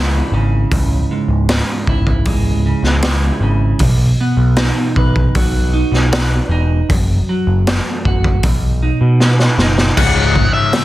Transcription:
Already playing: C#2 C#3 G#3 E4
0.32 G#1 C#3
0.71 C#1 C#2, kick, open hi-hat
1.11 G#2
1.28 C#1
1.49 C#3, snare, open hi-hat
1.87 C#1 E4, kick
2.07 kick
2.25 C#1 G#3, kick, open hi-hat
2.66 C#3
2.83 C#2, snare
3.02 E4, snare, open hi-hat
3.40 G#1 C#3
3.79 B1 B2, kick, open hi-hat
4.20 B3
4.37 B1
4.56 D#4, snare, open hi-hat
4.96 B1 B4, kick
5.16 kick
5.35 B1 F#4, kick, open hi-hat
5.73 D#4
5.92 B1, snare
6.12 B4, snare, open hi-hat
6.49 E1 D#4
6.89 F#1 F#2, kick, open hi-hat
7.29 F#3
7.47 F#1
7.67 A3, snare, open hi-hat
8.05 F#1 F#4, kick
8.24 kick
8.43 B1 B2, kick, open hi-hat
8.82 D#4
9.01 B2
9.20 B4, snare
9.39 snare
9.58 F#1 D#4, snare
9.78 snare
9.97 C#1 C#2 G#2 C#3 F#5, kick, crash
10.15 C#1
10.36 C#2 G#2, kick
10.54 E5
10.73 C#2 G#2 G#3, snare, open hi-hat

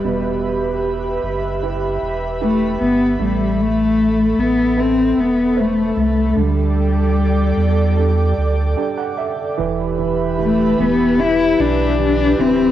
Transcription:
Already playing: G3 E4 G4 B4 E5 B5
0.04 E1 B2
1.23 F#1
1.63 E4 G4 B4
2.02 E1
2.41 A3 E4 G4 B4
2.81 G1 B3
3.19 A1 G3 A3 A4
3.62 A3
4.38 A1 B3
4.77 C4 A4 B4 E5
5.17 E1 B3
5.56 A4 B4 C5
5.60 A3
5.97 C2 A3
6.36 D2 D3 G3 D5 G5 D6
7.57 E2
7.96 D4 G4 A4
8.38 D2
8.77 D4 G4 A4 G5
8.98 F#5
9.17 E5
9.58 E1 E3 G4 B4 E5 B5
9.98 E3
10.38 E3 A3
10.78 E1 E3 B3
11.18 E3 E4
11.58 B1 E3 D4
11.99 E3
12.38 D1 E3 C4

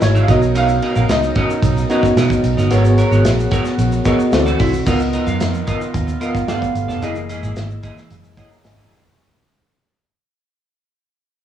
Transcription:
Already playing: E3 G#3 A#3 E4 F#4 G#4 A#4 D#5
0.01 G#1 C#5, muted clean electric guitar stroke, snare, ride, shaker
0.15 E4 G#4 A#4 E5, shaker
0.22 F5
0.28 B1 C#3 B3 C#4 D#4 F#4 A#4 C#5 D#5, kick, ride, shaker
0.42 muted clean electric guitar stroke, shaker
0.55 C#4 F#4 A#4 D#5 F5, ride, shaker
0.69 muted clean electric guitar stroke, shaker
0.82 C#4 F#4 A#4 D#5, ride
0.96 A#1 C#4 F#4 A#4 F5, shaker
1.09 C#2 D#5, snare, ride, shaker
1.23 muted clean electric guitar stroke, shaker
1.35 C#4 F#4 A#4 D#5, kick, ride
1.50 muted clean electric guitar stroke, shaker
1.62 B1, muted clean electric guitar stroke, kick, ride, shaker
1.77 muted clean electric guitar stroke, shaker
1.89 B3 C#4 D#4 F#4 A#4 D#5, ride, shaker
2.03 muted clean electric guitar stroke, kick, snare, shaker
2.16 B2 C#4 F#4 A#4 D#5, snare, ride, shaker
2.30 kick, shaker
2.44 B1, muted clean electric guitar stroke, ride, shaker
2.57 G1 C#4 F#4 A#4 D#5, snare, shaker
2.70 G#1 B3 F#4 G#4 A#4 B4 C#5, ride, shaker
2.78 C#5
2.84 muted clean electric guitar stroke, shaker
2.97 B3 F#4 A#4 C#5, ride, shaker
3.11 G#1 B3 F#4 A#4 C#5, shaker
3.24 A#1, snare, ride, shaker
3.39 muted clean electric guitar stroke, shaker
3.51 B3 F#4 A#4 C#5, kick, ride, shaker
3.65 muted clean electric guitar stroke, snare, shaker
3.78 A#1, muted clean electric guitar stroke, ride, shaker
3.92 muted clean electric guitar stroke, shaker
4.05 B3 F#4 G#4 A#4 C#5 D#5, kick, ride, shaker
4.20 muted clean electric guitar stroke, shaker
4.32 D2 E3 C4 E4 F#4 A4 C5, muted clean electric guitar stroke, snare, ride, shaker
4.40 D5
4.46 A3 E4 F#4 D5, shaker
4.59 C2 A3 E4 F#4 C5, kick, open hi-hat, ride, shaker
4.73 muted clean electric guitar stroke, shaker
4.86 C#2 D#3 B3 F4 A#4 D#5, kick, crash, shaker
5.00 muted clean electric guitar stroke, shaker
5.13 B3 F4 A#4 D#5, closed hi-hat, shaker
5.27 F#2 B3 F4 A#4 F5, shaker
5.40 F2, snare, closed hi-hat, shaker
5.53 muted clean electric guitar stroke, shaker
5.67 B3 F4 A#4 D#5, kick, closed hi-hat, shaker
5.80 muted clean electric guitar stroke, shaker
5.94 D#2, muted clean electric guitar stroke, kick, closed hi-hat, shaker
6.07 muted clean electric guitar stroke, shaker
6.20 B3 F4 A#4 D#5 F5, closed hi-hat, shaker
6.34 muted clean electric guitar stroke, kick, snare, shaker
6.48 G2 B2 A3 B3 F4 G4 A4 D5 F5, snare, closed hi-hat, shaker
6.61 muted clean electric guitar stroke, kick, shaker
6.75 G1, muted clean electric guitar stroke, closed hi-hat, shaker
6.88 F1 B3 F4 A4 D5, snare, shaker
7.02 F#1 E3 G#3 A#3 E4 G#4 D#5, closed hi-hat, shaker
7.15 muted clean electric guitar stroke, shaker
7.29 A#3 E4 G#4 D#5, closed hi-hat, shaker
7.43 G#1 A#3 E4 G#4 D#5, shaker
7.56 G#1, snare, closed hi-hat, shaker
7.70 muted clean electric guitar stroke, shaker
7.83 A#3 E4 G#4 D#5, kick, closed hi-hat, shaker
7.97 muted clean electric guitar stroke, snare, shaker
8.10 F#1, muted clean electric guitar stroke, closed hi-hat, shaker
8.24 muted clean electric guitar stroke, shaker
8.37 A#3 E4 G#4 C#5 D#5 F#5, kick, closed hi-hat, shaker
8.51 E5 A#5, muted clean electric guitar stroke, shaker
8.64 G#1 D#5 G#5, muted clean electric guitar stroke, snare, closed hi-hat, shaker
8.78 A#3 E4 G#4 E5 A#5, shaker
8.91 F1 A#3 E4 G#4 D#5, closed hi-hat, shaker
9.05 G#5 C#6, muted clean electric guitar stroke, shaker

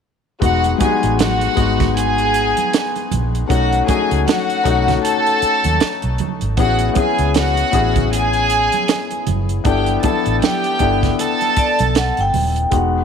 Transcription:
0.40 E1 G#3 B3 D#4 F#4 F#5, kick, closed hi-hat, muted conga
0.64 closed hi-hat, muted conga
0.78 G3 B3 D#4 F#4 G#4 G#5, kick, closed hi-hat, high conga
0.85 G#3
1.03 A1, closed hi-hat
1.19 F#4 F#5, snare, closed hi-hat, muted conga, high conga
1.41 closed hi-hat
1.55 G#1 G#3 B3 D#4 F#4, kick, closed hi-hat
1.80 kick, snare, closed hi-hat, low conga
1.97 G#4 G#5, closed hi-hat, muted conga
2.18 closed hi-hat
2.34 closed hi-hat
2.57 closed hi-hat, high conga
2.73 snare, closed hi-hat
2.96 closed hi-hat, muted conga
3.11 A#1, closed hi-hat, high conga, low conga
3.35 closed hi-hat
3.48 B1 A3 C#4 D#4 F#4 F#5, kick, closed hi-hat, muted conga
3.73 closed hi-hat, muted conga
3.87 A3 C#4 D#4 F#4 G#4 G#5, kick, closed hi-hat, high conga
4.11 C#2, closed hi-hat
4.27 F#4 F#5, snare, closed hi-hat, high conga
4.50 closed hi-hat
4.64 B1 A3 C#4 D#4 F#4, kick, closed hi-hat
4.88 kick, snare, closed hi-hat, low conga
5.05 A4 A5, closed hi-hat
5.26 closed hi-hat
5.42 muted fingered electric bass stroke, closed hi-hat
5.64 D#2, closed hi-hat, high conga
5.80 muted fingered electric bass stroke, snare, closed hi-hat, muted conga
6.02 B1, closed hi-hat, muted conga
6.18 closed hi-hat, high conga, low conga
6.41 G#1, closed hi-hat
6.57 A1 B3 C#4 E4 F#4 G#4 F#5, kick, closed hi-hat, muted conga
6.79 closed hi-hat, muted conga
6.94 B3 C#4 E4 G#4, kick, closed hi-hat, high conga
6.98 G#4 G#5
7.18 C#2, closed hi-hat
7.34 F#4 F#5, snare, closed hi-hat, muted conga, high conga
7.57 closed hi-hat
7.71 A1 B3 C#4 E4 G#4, kick, closed hi-hat
7.96 kick, closed hi-hat, low conga
8.13 G#4 G#5, closed hi-hat
8.33 closed hi-hat
8.50 closed hi-hat
8.72 closed hi-hat, high conga
8.88 snare, closed hi-hat, muted conga
9.11 closed hi-hat, muted conga
9.27 F#1, closed hi-hat, high conga, low conga
9.49 closed hi-hat
9.64 G1 B3 D4 E4 G4 A4 G5, kick, closed hi-hat, muted conga
9.86 closed hi-hat, muted conga
10.03 B3 D4 E4 A4 A5, kick, closed hi-hat, high conga
10.26 A1, closed hi-hat
10.42 G4 G5, snare, closed hi-hat, muted conga, high conga
10.64 closed hi-hat
10.79 G1 B3 D4 E4 A4, kick, closed hi-hat
11.03 kick, snare, closed hi-hat, low conga
11.19 A4 A5, closed hi-hat, muted conga
11.41 closed hi-hat, muted conga
11.56 D5, muted fingered electric bass stroke, kick, closed hi-hat
11.79 B1, closed hi-hat, high conga
11.95 F#5, snare, closed hi-hat
12.17 G1 G5, closed hi-hat, muted conga
12.34 D#1, open hi-hat, high conga, low conga
12.56 closed hi-hat
12.71 E1 G#3 B3 D#4 F#4, kick, closed hi-hat, muted conga
12.75 F#5

